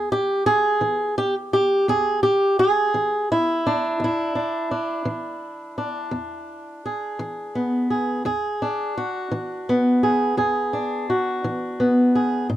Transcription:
0.00 0.40 E2 medium
0.00 0.11 G#4 medium
0.12 0.46 G4 medium
0.46 1.17 G#4 medium
0.81 1.46 E3 medium
1.18 1.34 G4 medium
1.53 1.89 G4 medium
1.88 2.53 E2 medium
1.88 2.22 G#4 medium
2.23 2.59 G4 medium
2.59 3.31 G#4 medium
2.94 3.59 E3 medium
3.32 4.02 E4 medium
3.67 4.34 D4 medium
4.00 4.65 E2 medium
4.04 6.85 E4 medium
4.35 4.71 D4 soft
4.71 5.77 D4 soft
5.05 5.71 E3 medium
5.78 8.22 D4 medium
6.11 6.77 E2 medium
6.86 7.89 G#4 soft
7.19 7.84 E3 medium
7.55 8.22 B3 soft
7.90 8.22 G#4 soft
8.25 8.90 E2 medium
8.25 8.97 G#4 medium
8.62 10.72 D4 medium
8.97 10.03 F#4 medium
9.31 9.96 E3 medium
9.69 11.79 B3 medium
10.03 10.36 G#4 medium
10.37 11.02 E2 medium
10.37 11.09 G#4 medium
10.73 12.46 D4 medium
11.10 12.15 F#4 medium
11.44 12.08 E3 medium
11.80 12.47 B3 medium
12.15 12.47 G#4 medium
12.50 12.57 A2 medium

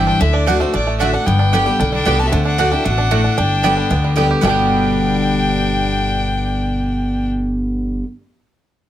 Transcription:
0.00 0.19 G2 medium
0.00 0.19 E3 medium
0.00 0.20 G3 medium
0.00 0.21 C4 medium
0.00 0.20 D4 medium
0.00 0.20 E4 loud
0.00 0.18 G4 medium
0.07 0.21 D4 medium
0.07 0.21 G5 loud
0.20 0.61 D2 loud
0.20 0.46 D3 medium
0.20 0.34 D4 medium
0.20 0.35 E5 medium
0.34 0.47 D4 medium
0.34 0.62 D5 medium
0.46 0.60 D3 medium
0.46 0.56 A3 medium
0.46 0.61 A3 loud
0.46 0.73 D4 medium
0.46 0.61 D4 medium
0.46 0.56 F#4 medium
0.46 0.60 F#4 medium
0.46 0.56 D5 medium
0.46 0.57 F#5 loud
0.60 0.86 A3 medium
0.60 0.74 D4 medium
0.60 0.73 F#4 medium
0.60 0.73 C5 medium
0.73 1.15 A1 medium
0.73 1.24 A2 medium
0.73 1.00 D4 medium
0.73 0.98 D5 medium
0.87 1.24 A3 medium
0.99 1.13 D3 medium
0.99 1.09 A3 medium
0.99 1.13 A3 medium
0.99 1.13 D4 medium
0.99 1.14 D4 medium
0.99 1.09 F#4 medium
0.99 1.12 F#4 loud
0.99 1.09 D5 medium
0.99 1.15 E5 medium
0.99 1.09 F#5 loud
1.13 1.39 D4 medium
1.13 1.27 D4 soft
1.13 1.26 F#4 medium
1.13 1.28 F#5 medium
1.26 1.67 G1 loud
1.26 1.77 G2 medium
1.26 1.63 B3 medium
1.26 1.92 G5 medium
1.39 1.76 D4 medium
1.53 1.66 D3 medium
1.53 1.66 G3 medium
1.53 1.62 B3 medium
1.53 1.66 B3 loud
1.53 1.90 G4 medium
1.53 1.62 G4 medium
1.53 1.65 G4 loud
1.53 1.62 D5 loud
1.53 1.63 G5 loud
1.66 1.91 G3 medium
1.66 1.80 B3 medium
1.66 1.79 G4 medium
1.80 2.02 B1 medium
1.80 2.04 D3 medium
1.80 2.16 D4 medium
1.93 2.29 G3 medium
1.93 2.21 D4 medium
1.93 2.21 G5 loud
2.05 2.28 C2 medium
2.05 2.18 D3 medium
2.05 2.19 G3 medium
2.05 2.15 B3 medium
2.05 2.32 B3 medium
2.05 2.19 B3 medium
2.05 2.15 G4 medium
2.05 2.18 G4 loud
2.05 2.15 D5 medium
2.05 2.15 G5 loud
2.19 2.33 B3 soft
2.19 2.32 D4 medium
2.19 2.30 F#4 medium
2.19 2.32 G4 medium
2.19 2.28 A5 loud
2.27 2.33 C4 medium
2.27 2.33 E5 medium
2.32 2.73 D2 loud
2.32 2.57 D3 medium
2.32 2.69 A3 medium
2.32 2.45 D4 medium
2.32 2.45 F#5 medium
2.45 2.58 D4 medium
2.45 2.73 D4 medium
2.45 2.74 F#5 loud
2.58 2.71 D3 medium
2.58 2.67 A3 medium
2.58 2.71 A3 loud
2.58 2.72 D4 medium
2.58 2.71 D4 loud
2.58 2.67 F#4 medium
2.58 2.70 F#4 loud
2.58 2.68 D5 medium
2.58 2.68 F#5 loud
2.71 2.98 D4 medium
2.71 2.85 D4 medium
2.71 2.86 E4 medium
2.71 2.84 F#4 medium
2.71 2.86 G5 medium
2.84 3.26 A1 medium
2.84 3.10 B2 medium
2.84 3.10 A3 medium
2.84 3.38 D4 medium
2.84 3.39 F#5 medium
2.98 3.24 D4 medium
3.11 3.36 A2 medium
3.11 3.20 A3 medium
3.11 3.37 A3 medium
3.11 3.20 F#4 loud
3.11 3.20 D5 medium
3.11 3.20 F#5 loud
3.24 3.37 D4 medium
3.37 3.78 G1 loud
3.37 3.88 G2 medium
3.37 4.16 D4 medium
3.37 3.74 D4 medium
3.37 4.16 G5 medium
3.63 3.89 D3 medium
3.63 3.89 G3 medium
3.63 3.72 B3 medium
3.63 3.90 B3 medium
3.63 3.90 B3 loud
3.63 3.72 G4 medium
3.63 3.90 G4 loud
3.63 3.73 D5 medium
3.63 3.73 G5 loud
3.77 4.14 D4 medium
3.90 4.31 D2 medium
3.90 4.14 D3 medium
3.90 4.16 B3 medium
4.04 4.41 G3 medium
4.16 4.41 D3 medium
4.16 4.41 G3 medium
4.16 4.25 B3 medium
4.16 4.43 B3 medium
4.16 4.42 B3 medium
4.16 4.25 G4 loud
4.16 4.42 G4 loud
4.16 4.26 D5 medium
4.16 4.26 G5 medium
4.31 4.43 G4 medium
4.41 8.00 G1 loud
4.41 8.03 G2 medium
4.41 8.03 B2 medium
4.41 8.04 D3 medium
4.41 8.00 G3 medium
4.41 8.04 G3 medium
4.41 8.03 B3 medium
4.41 8.04 B3 medium
4.41 7.29 D4 medium
4.41 8.03 G4 medium
4.41 8.04 G4 medium
4.41 8.04 D5 loud
4.41 7.29 G5 medium
4.41 8.04 G5 medium
4.45 8.01 B3 medium
4.45 8.02 D4 medium
4.49 8.03 G4 medium

